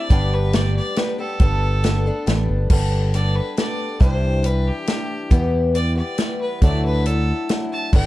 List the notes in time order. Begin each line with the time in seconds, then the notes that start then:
Already playing: G3 C4 D4 E4
0.00 D5
0.10 G1 G2 D3 G3 B3 D4 G4, kick, closed hi-hat
0.34 B4
0.53 G3 B3 D4 G4 D5, snare, closed hi-hat
0.76 D5
0.96 G3 B3 D4 G4 B4, snare, closed hi-hat
1.18 G3 B3 D4 G4 A4
1.40 G1 G3 B3 D4 A4, kick, closed hi-hat
1.83 G3 B3 D4 A4, snare, closed hi-hat
2.06 B3 D4 A4
2.26 A1 G3 B3 D4 A4, snare, closed hi-hat
2.49 G1
2.70 G1 G3 B3 D4 A4, kick, crash
3.13 G3 B3 D4 A4 D5, closed hi-hat
3.36 B4
3.57 G3 B3 D4 A4 D5, snare, closed hi-hat
4.00 C2 C3 E3 G3 D4 G4 C5, kick, closed hi-hat
4.43 E3 G3 D4 G4 B4, closed hi-hat
4.67 G4
4.86 E3 G3 D4 G4, snare, closed hi-hat
5.30 E2 B2 E3 G3 B3 G4, kick, closed hi-hat
5.75 E3 G3 B3 G4 D5, closed hi-hat
5.96 E3 G3 B3 G4 D5
6.18 E3 G3 B3 G4, snare, closed hi-hat
6.41 B4
6.62 D2 D3 F#3 A3 D4 E4 D5, kick, closed hi-hat
6.85 B4
7.06 F#3 A3 D4 E4 A4, closed hi-hat
7.49 F#3 A3 D4 E4, snare, closed hi-hat
7.72 A5
7.93 G1 G3 B3 D4 A4 G5, kick, crash